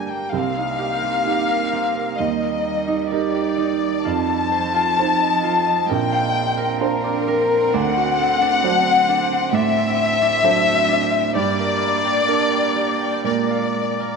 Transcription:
Already playing: D3 G3 A#3 D4 G4 A#4 D5 G5
0.09 A#3 G5
0.31 C2 A#3 C4 F5
0.56 D#4
0.79 G4
1.02 C4
1.25 D#4 G4
1.50 A#4
1.72 C4
1.96 A#4
2.16 D#2 G3 D#4 D#5
2.42 A#4
2.88 D#4
3.08 D#4 A#4 D5
3.13 G4
3.35 G4
3.58 D#4
4.04 F2 F3 F4 A5
4.28 A4
4.51 C5
4.74 F4
4.99 D#4 C5
5.20 D#5
5.44 F4
5.66 D#5
5.88 A#1 C4 A#4 G5
6.12 F5
6.57 A#4
6.81 D4 A#4 C5 F5
7.04 D5
7.28 A#4
7.72 D2 D4 F#5
7.97 F#4
8.19 A4
8.41 D4
8.63 F#3 D4 C5
8.86 C5
9.09 D4
9.32 C5
9.52 A2 D4 E5
9.77 A4
10.21 D4
10.43 F#3 D4 A4 C5
10.66 F#4
10.88 D4
11.34 G2 A#3 G4 D5
11.58 A#4
11.81 D5
12.04 G4
12.28 D4 A#4
12.52 G5
12.76 G4
13.01 G5
13.24 A#2 G#3 A#4 D5
13.51 F5
14.00 A#4

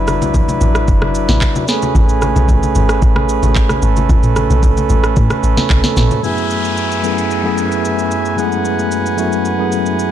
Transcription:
Already playing: F#1 F#3 D4 E4 B4
0.08 cross-stick, high conga, shaker
0.22 B1, high conga, shaker
0.34 kick, low conga, shaker
0.49 high conga, shaker
0.61 A1, low conga, shaker
0.75 cross-stick, shaker
0.88 F#1, kick, shaker
1.02 cross-stick, high conga
1.15 shaker
1.28 A1, snare, high conga, shaker
1.41 kick, clap, shaker
1.56 high conga, shaker
1.68 A3 C#4 G#4 B4, snare, shaker
1.82 high conga, shaker
1.95 A1, kick, low conga, shaker
2.09 shaker
2.22 cross-stick, high conga, shaker
2.36 B1, high conga, shaker
2.49 kick, low conga, shaker
2.63 high conga, shaker
2.75 G#1, low conga, shaker
2.89 cross-stick, shaker
3.02 A1, kick, shaker
3.16 cross-stick, high conga
3.29 shaker
3.43 A1, high conga, shaker
3.55 kick, clap, shaker
3.69 cross-stick, high conga, shaker
3.82 G#1 A4, shaker
3.96 high conga, shaker
4.09 A1, kick, low conga, shaker
4.23 mid tom, shaker
4.36 cross-stick, high conga, shaker
4.50 B1, high conga, shaker
4.63 kick, low conga, shaker
4.77 high conga, shaker
4.89 A1, low conga, shaker
5.04 cross-stick, shaker
5.16 A2, kick, shaker
5.30 cross-stick, high conga, shaker
5.43 A1, shaker
5.57 snare, high conga, shaker
5.70 B1, kick, clap, shaker
5.84 snare, high conga, shaker
5.97 A1, snare, mid tom, shaker
6.11 high conga, shaker
6.22 F#2 F#3 A3 B3 E4 G#4 B4 E5 G#5, downlifter, shaker
6.38 shaker
6.50 shaker
6.65 shaker
6.77 shaker
6.92 shaker
7.03 F#2 A3 B3 E4 G#4, shaker
7.18 shaker
7.31 shaker
7.43 F#2 A3 B3 E4 G#4
7.58 shaker
7.72 shaker
7.85 shaker
7.99 shaker
8.11 shaker
8.25 shaker
8.37 F#2 G#3 B3 E4 G#4 F#5, shaker
8.44 A3
8.52 shaker
8.65 shaker
8.79 shaker
8.91 shaker
9.06 shaker
9.17 F#2 A3 B3 E4 F#4, shaker
9.32 shaker
9.45 shaker
9.58 F#2 A3 B3 E4 G#4
9.72 shaker
9.86 shaker
9.99 shaker

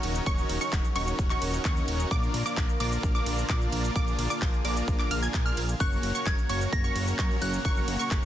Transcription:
Already playing: C#3 F#3 A#3 C#4 D#4 F#4 A#4 C#5 C#6, sub drop
0.03 D#1, open hi-hat, ride
0.15 shaker
0.26 D#1 C#4 D#4 F#4 A#4 C#5 C#6, kick, shaker
0.38 shaker
0.49 D#1, open hi-hat, ride
0.61 C#4 D#4 F#4 A#4 C#5 C#6, shaker
0.73 D#1, kick, clap, shaker
0.85 shaker
0.96 D#1 C#4 D#4 F#4 A#4 C#5 C#6, open hi-hat, ride
1.08 shaker
1.19 D#1, kick, shaker
1.30 C#4 D#4 F#4 A#4 C#5 C#6, clap, shaker
1.42 D#1, open hi-hat, ride
1.54 shaker
1.65 D#2 C#4 D#4 F#4 A#4 C#5 C#6, kick, clap, shaker
1.77 shaker
1.88 D#1, open hi-hat, ride
2.00 shaker
2.11 A#1 D3 F3 A#3 D4 F4 A#4 D5 D6, kick, shaker
2.23 shaker
2.34 A#1, open hi-hat, ride
2.46 A#3 D4 F4 A#4 D5 D6, shaker
2.57 A#1, kick, clap, shaker
2.69 shaker
2.80 A#1 A#3 D4 F4 A#4 D5 D6, open hi-hat, ride
2.92 shaker
3.03 A#1, kick, shaker
3.15 A#3 D4 F4 A#4 D5 D6, shaker
3.26 A#1, open hi-hat, ride
3.38 shaker
3.49 A#2 A#3 D4 F4 A#4 D5 D6, kick, clap, shaker
3.61 shaker
3.72 A#1, open hi-hat, ride
3.84 shaker
3.95 A#1 A#3 D4 F4 G#4 A#4 D5 D6, kick, shaker
4.08 shaker
4.19 A#1, open hi-hat, ride
4.30 A#3 D4 F4 A#4 D5 D6, shaker
4.42 A#1, kick, clap, shaker
4.54 shaker
4.65 A#1 A#3 D4 F4 A#4 D5 D6, open hi-hat, ride
4.77 shaker
4.88 A#1, kick, shaker
4.99 A#3 D4 F4 A#4 D5 D6, clap, shaker
5.11 A#1 A#3 D4 F4 A#4 F5 F6, open hi-hat, ride
5.22 A#3 D4 F4 A#4 G#5 G#6, shaker
5.34 A#2, kick, clap, shaker
5.46 A#3 D4 F4 A#4 F5 F6, shaker
5.57 A#1, open hi-hat, ride
5.69 shaker
5.80 F#1 C#3 F#3 A#3 C#4 F#4 A#4 C#5 C#6 F#6, kick, shaker
5.92 shaker
6.03 F#1, open hi-hat, ride
6.15 A#3 C#4 F#4 A#4 C#5 C#6, shaker
6.26 F#1 G#6, kick, clap, shaker
6.38 shaker
6.49 F#1 A#3 C#4 F#4 A#4 C#5 C#6, open hi-hat, ride
6.61 shaker
6.73 F#1 A#6, kick, shaker
6.84 A#3 C#4 F#4 A#4 C#5 C#6, shaker
6.96 F#1, open hi-hat, ride
7.08 shaker
7.19 F#2 A#3 C#4 F#4 A#4 C#5 C#6, kick, clap, shaker
7.31 shaker
7.42 F#1 F#6, open hi-hat, ride
7.54 shaker
7.65 F#1 A#3 C#4 F#4 A#4 C#5 F#5 C#6, kick, shaker
7.77 shaker
7.88 F#1, open hi-hat, ride
7.99 A#3 C#4 F#4 A#4 C#5 C#6, shaker
8.11 F#1, kick, clap, shaker

